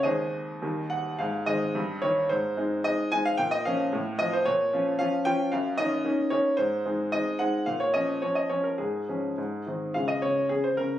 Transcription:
<<
  \new Staff \with { instrumentName = "Grand piano" } { \time 2/4 \key aes \major \tempo 4 = 110 << { <aes' c'' ees''>4. ges''8 | f''8 ees''4 des''8 | c''4 ees''8 aes''16 f''16 | g''16 ees''16 f''4 ees''16 c''16 |
des''4 f''8 g''8 | \key des \major f''8 ees''4 des''8 | c''4 ees''8 ges''8 | f''16 des''16 ees''8 des''16 ees''16 des''16 bes'16 |
aes'4. r8 | f''16 ees''16 des''8 aes'16 c''16 bes'8 | } \\ { r2 | r2 | r2 | r2 |
r2 | r2 | r2 | r2 |
r2 | <aes f'>2 | } >> }
  \new Staff \with { instrumentName = "Grand piano" } { \time 2/4 \key aes \major <ees, ees aes c'>4 <ees, ees g bes>4 | aes,8 <ees aes c'>8 g,8 <ees bes ees'>8 | aes,8 <aes c' ees'>8 <aes c' ees'>8 <aes c' ees'>8 | bes,8 <f bes des'>8 a,8 <f c' f'>8 |
bes,8 <f des' f'>8 <f des' f'>8 <f des' f'>8 | \key des \major ges,8 <bes des' ees'>8 <bes des' ees'>8 <bes des' ees'>8 | aes,8 <aes c' ees'>8 <aes c' ees'>8 <aes c' ees'>8 | bes,8 <f des'>8 <f des'>8 <f des'>8 |
aes,8 <f des'>8 aes,8 <ees c' ees'>8 | des8 des8 des8 des8 | }
>>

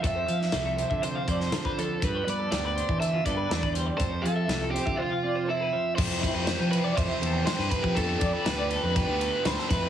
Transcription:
<<
  \new Staff \with { instrumentName = "Overdriven electric guitar" } { \time 4/4 \key f \lydian \tempo 4 = 121 e''2 c''8 c''4 a'8 | b'8 d''8 d''16 d''8. e''8 d''4 r8 | c''8 a'4 g'8 f'4 e''4 | c''4. b'8 c''4 c''8 b'8 |
a'4 b'4 b'4 c''8 b'8 | }
  \new Staff \with { instrumentName = "Clean electric guitar" } { \time 4/4 \key f \lydian a'16 c''16 f''16 e''8 a'16 c''16 e''16 c''16 f''16 d''16 c''16 a'16 b'16 c''8 | a'16 c''16 b'16 a'8 b'16 c''8 a'16 f'16 a'16 b'16 a'16 b'16 c''16 d''16 | a'16 c''16 f''16 e''8 a'16 c''16 e''16 c''16 f''16 d''16 c''16 a'16 b'16 c''8 | a'8 e'16 b'16 c''16 b'16 c''16 d''16 e''8 a'16 a'16 c''16 b'16 a'16 g'16 |
a'8 d''16 b'16 a'16 d''16 a'16 b'16 g'8 a'16 f'16 b'16 a'16 b'16 c''16 | }
  \new Staff \with { instrumentName = "Overdriven electric guitar" } { \time 4/4 \key f \lydian r1 | r1 | r1 | <c e g c' g'>8 <g c' g'>8 <e g c' g'>8 <g c' g'>4. <c e g c' g'>8 <g c' g'>8 |
<f b d' g'>8 <b d' g'>8 <f b d' g'>8 <b d' g'>4. <f b d' g'>8 <a, e a c' e'>8 | }
  \new Staff \with { instrumentName = "Clean electric guitar" } { \clef bass \time 4/4 \key f \lydian << { c'4 a'4 c'8 a'4 r8 | r8 b4 d'4 b8 d'4 | r8 c'4 c'4 c'8 c'4 | r1 |
r1 | } \\ { <f, f>8 f4 c4. f8 f,8 | g,4 g4 d4. g8 | f,4 f4 c4. f8 | r1 |
r1 | } >> }
  \new Staff \with { instrumentName = "Fingered electric bass" } { \clef bass \time 4/4 \key f \lydian f,8 f8 c,8. d8. f,8 d4 | g,8 g8 d,8. e8. g,8 e,4 | f,8 f8 c,8. d16 r2 | f,8. f,8 f8 r16 f,16 r16 e,8 r16 g,16 r16 f16 |
f,8 f,16 r16 d,8. f,8 d,8 r16 d,16 r16 f,8 | }
  \new DrumStaff \with { instrumentName = "Drums" } \drummode { \time 4/4 <hh bd>8 hh16 sn16 <hh sn>8 hh16 bd16 hh8 <hh bd>16 sn16 <hh sn>16 bd16 hh8 | <hh bd>8 hh8 <hh sn>8 hh16 bd16 hh8 <hh bd>8 <hh sn>16 bd16 hh8 | <hh bd>8 hh8 <hh sn>8 <hh sn>16 bd16 r4 r4 | <cymc bd>8 <bd cymr>8 <cymr sn>8 cymr8 <bd cymr>8 cymr8 <cymr sn>16 sn16 <bd cymr>16 bd16 |
<bd cymr>8 <bd cymr>8 <cymr sn>8 cymr8 <bd cymr>8 cymr8 <cymr sn>16 sn16 <bd cymr sn>8 | }
>>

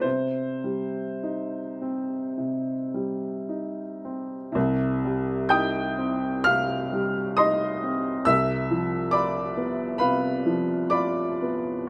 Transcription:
<<
  \new Staff \with { instrumentName = "Grand piano" } { \time 4/4 \key c \minor \tempo 4 = 63 c''2. r4 | r4 <g'' ees''' g'''>4 <f'' f'''>4 <ees'' c''' ees'''>4 | <e'' e'''>4 <d'' b'' d'''>4 <b' f'' b''>4 <d'' b'' d'''>4 | }
  \new Staff \with { instrumentName = "Grand piano" } { \clef bass \time 4/4 \key c \minor c8 g8 ees'8 c'8 c8 g8 ees'8 c'8 | <c, c>8 g8 ees'8 c'8 c8 g8 ees'8 c'8 | <c, c>8 f8 f'8 b8 c8 f8 f'8 b8 | }
>>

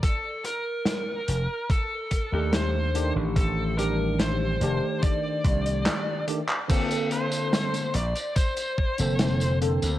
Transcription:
<<
  \new Staff \with { instrumentName = "Lead electric guitar" } { \time 4/4 \key bes \major \tempo 4 = 72 a'8 bes'4. a'4 c''8. r16 | a'8 bes'8 c''4 d''4. r8 | a'8 c''4 d''8 c''4. r8 | }
  \new Staff \with { instrumentName = "Tine electric piano" } { \time 4/4 \key bes \major r2 r8. <ees a d' g'>8. <ees a d' g'>8~ | <ees a d' g'>8 <ees g d' g'>4 <ees a d' g'>2 <ees a d' g'>16 r16 | <d bes c' a'>4. r4 r16 <d bes c' a'>8. <d bes c' a'>8 | }
  \new Staff \with { instrumentName = "Slap bass" } { \clef bass \time 4/4 \key bes \major r4. f,,16 r4 ees,4 a,,16~ | a,,4. f,,16 r8. c,8 r4 | r4. bes,,16 r4 f,,4 d,16 | }
  \new DrumStaff \with { instrumentName = "Drums" } \drummode { \time 4/4 <hh bd>8 hh8 <hh sn>8 hh8 <hh bd>8 <hh bd>8 <hh sn>8 hh8 | <hh bd>8 hh8 <hh sn>8 hh8 <hh bd>8 <hh bd>16 hh16 <hc hh sn>8 hh16 hc16 | <cymc hh bd tamb>16 <hh tamb>16 hh16 <hh tamb>16 <hh sn tamb>16 <hh tamb>16 hh16 <hh tamb>16 <hh bd tamb>16 <hh tamb>16 bd16 <hh tamb>16 <hh sn tamb>16 <hh tamb>16 hh16 <hh tamb>16 | }
>>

